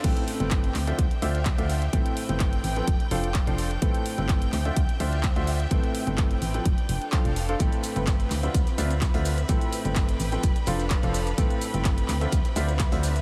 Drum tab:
CC |x---------------|----------------|----------------|----------------|
HH |xxoxxxoxxxoxxxox|xxoxxxoxxxoxxxox|xxoxxxoxxxoxxxox|xxoxxxoxxxoxxxox|
SH |----------------|----------------|----------------|----------------|
CP |----x-x-----x---|----x-------x---|----x-x-----x---|----x-------x---|
SD |----------------|----------------|----------------|----------------|
BD |o---o---o---o---|o---o---o---o---|o---o---o---o---|o---o---o---o---|

CC |----------------|----------------|----------------|
HH |xxoxxxoxxxoxxxox|xxoxxxoxxxoxxxox|xxoxxxoxxxoxxxox|
SH |xxxxxxxxxxxxxxxx|xxxxxxxxxxxxxxxx|xxxxxxxxxxxxxxxx|
CP |----x-x-----x---|----x-------x---|----x-x-----x---|
SD |----o-o--o--o-o-|----o------o-o--|----o-o--oo-o-o-|
BD |o---o---o---o---|o---o---o---o---|o---o---o---o---|